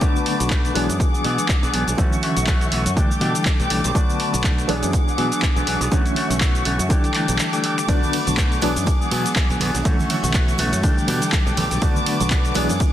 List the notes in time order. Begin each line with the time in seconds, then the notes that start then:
Already playing: D6
0.01 B1 D3 F#3 A3 B3 D4 F#4 B4 A5, kick, closed hi-hat, shaker
0.16 shaker
0.26 A3 D4 F#4, open hi-hat
0.40 B1 D4 F#4, closed hi-hat, shaker
0.50 A3 D4 F#4, kick, clap, closed hi-hat, shaker
0.65 closed hi-hat, shaker
0.74 B1 E3 F#3 G#3 B3 D4 G#4 F#5 D6, open hi-hat
0.89 F#2 B3 D4 G#4, closed hi-hat, shaker
1.00 kick, closed hi-hat, shaker
1.13 B3 D4 G#4, shaker
1.24 B2 F#3 B3 D4 G#4, open hi-hat
1.38 closed hi-hat, shaker
1.49 kick, clap, closed hi-hat, shaker
1.63 B1 F#3 B3 D4 G#4, closed hi-hat, shaker
1.73 B1 F#3 B3 D4 G#4, open hi-hat
1.87 B1 B3 D4 G#4, closed hi-hat, shaker
1.97 B1 D3 E3 F#3 A3 C#4 F#4 E5 C#6, kick, closed hi-hat, shaker
2.13 shaker
2.23 E3 A3 C#4 F#4, open hi-hat
2.37 B1 A3 C#4 F#4, closed hi-hat, shaker
2.47 E3 A3 C#4 F#4, kick, clap, closed hi-hat, shaker
2.61 closed hi-hat, shaker
2.72 B1 E3 A3 C#4 F#4, open hi-hat
2.86 F#2 A3 C#4 F#4, closed hi-hat, shaker
2.96 D3 E3 G3 A3 D4 G4 A4 G5 D6, kick, closed hi-hat, shaker
3.10 A3 D4 G4, muted fingered electric bass stroke, shaker
3.21 B2 E3 A3 D4 G4, open hi-hat
3.35 closed hi-hat, shaker
3.45 kick, clap, closed hi-hat, shaker
3.60 B1 E3 A3 D4 G4, closed hi-hat, shaker
3.70 B1 E3 A3 D4 G4, open hi-hat
3.84 B1 A3 D4 G4, closed hi-hat, shaker
3.94 B1 D3 F#3 A3 B3 D4 F#4 B4 A5, kick, closed hi-hat, shaker
4.10 shaker
4.20 open hi-hat
4.33 B1 D4 F#4, closed hi-hat, shaker
4.44 A3 D4 F#4, kick, clap, closed hi-hat, shaker
4.58 closed hi-hat, shaker
4.68 B1 E3 F#3 G#3 B3 D4 G#4 F#5 D6, open hi-hat
4.82 F#2 B3 D4 G#4, closed hi-hat, shaker
4.93 kick, closed hi-hat, shaker
5.07 B3 D4 G#4, shaker
5.17 B2 F#3 B3 D4 G#4, open hi-hat
5.32 closed hi-hat, shaker
5.42 kick, clap, closed hi-hat, shaker
5.56 B1 F#3 B3 D4 G#4, closed hi-hat, shaker
5.67 B1 F#3 B3 D4 G#4, open hi-hat
5.81 B1 B3 D4 G#4, closed hi-hat, shaker
5.91 D3 E3 F#3 A3 C#4 F#4 E5 C#6, kick, closed hi-hat, shaker
6.06 closed hi-hat, shaker
6.16 E3 A3 C#4 F#4, open hi-hat
6.30 B1 A3 C#4 F#4, closed hi-hat, shaker
6.41 E3 A3 C#4 F#4, kick, clap, closed hi-hat, shaker
6.55 closed hi-hat, shaker
6.65 B1 E3 A3 C#4 F#4, open hi-hat
6.79 F#2 A3 C#4 F#4, closed hi-hat, shaker
6.89 D3 E3 G3 A3 D4 G4 A4 G5 D6, kick, closed hi-hat, shaker
7.04 A3 D4 G4, closed hi-hat, shaker
7.14 E3 A3 D4 G4, clap, open hi-hat
7.28 B1, closed hi-hat, shaker
7.39 clap, closed hi-hat, shaker
7.53 E3 A3 D4 G4, closed hi-hat, shaker
7.64 E3 A3 D4 G4, open hi-hat
7.78 A3 D4 G4, finger snap, closed hi-hat, shaker
7.88 B1 D3 F#3 A3 B3 D4 F#4 B4 A5, kick, closed hi-hat, ride, tambourine, high conga, shaker
8.03 tambourine, low conga, shaker
8.13 open hi-hat, ride, tambourine
8.27 B1 D4 F#4, closed hi-hat, tambourine, high conga, low conga, shaker
8.37 A3 D4 F#4, kick, clap, closed hi-hat, ride, tambourine, shaker
8.52 closed hi-hat, tambourine, shaker
8.61 B1 E3 F#3 G#3 B3 D4 G#4 F#5, open hi-hat, ride, tambourine, high conga
8.76 F#2 B3 D4 G#4, closed hi-hat, tambourine, shaker
8.86 kick, closed hi-hat, ride, tambourine, shaker
9.00 B3 D4 G#4, shaker
9.11 B2 F#3 B3 D4 G#4, open hi-hat, ride, tambourine, high conga
9.26 closed hi-hat, tambourine, shaker
9.36 kick, clap, closed hi-hat, ride, tambourine, shaker
9.50 B1 F#3 B3 D4 G#4, closed hi-hat, high conga, shaker
9.60 B1 F#3 B3 D4 G#4, open hi-hat, ride, tambourine, low conga
9.74 B1 B3 D4 G#4, closed hi-hat, tambourine, shaker
9.84 B1 D3 E3 F#3 A3 C#4 F#4 E5 C#6, kick, closed hi-hat, ride, tambourine, high conga, shaker
9.99 tambourine, low conga, shaker
10.10 E3 A3 C#4 F#4, open hi-hat, ride, tambourine
10.23 B1 A3 C#4 F#4, closed hi-hat, tambourine, high conga, low conga, shaker
10.34 E3 A3 C#4 F#4, kick, clap, closed hi-hat, ride, tambourine, shaker
10.48 closed hi-hat, tambourine, shaker
10.58 B1 E3 A3 C#4 F#4, open hi-hat, ride, tambourine, high conga
10.72 F#2, closed hi-hat, tambourine, shaker
10.83 D3 E3 G3 A3 D4 G4 A4 G5 D6, kick, closed hi-hat, ride, tambourine, shaker
10.97 A3 D4 G4, muted fingered electric bass stroke, shaker
11.07 B2 E3 A3 D4 G4, open hi-hat, ride, tambourine, high conga
11.22 closed hi-hat, shaker
11.32 kick, clap, closed hi-hat, ride, shaker
11.46 B1 E3 A3 D4 G4, closed hi-hat, high conga, shaker
11.57 B1 E3 A3 D4 G4, open hi-hat, ride, tambourine, low conga
11.70 B1 A3 D4 G4, closed hi-hat, tambourine, shaker
11.81 D3 F#3 A3 B3 D4 F#4 B4 A5, kick, closed hi-hat, ride, tambourine, high conga, shaker
11.96 tambourine, low conga, shaker
12.06 A3 D4 F#4, open hi-hat, ride, tambourine
12.20 B1 D4 F#4, closed hi-hat, tambourine, high conga, low conga, shaker
12.30 A3 D4 F#4, kick, clap, closed hi-hat, ride, tambourine, shaker
12.45 closed hi-hat, tambourine, shaker
12.54 B1 E3 F#3 G#3 B3 D4 G#4 F#5, open hi-hat, ride, tambourine, high conga
12.69 F#2 B3 D4 G#4, closed hi-hat, tambourine, shaker
12.80 kick, closed hi-hat, ride, tambourine, shaker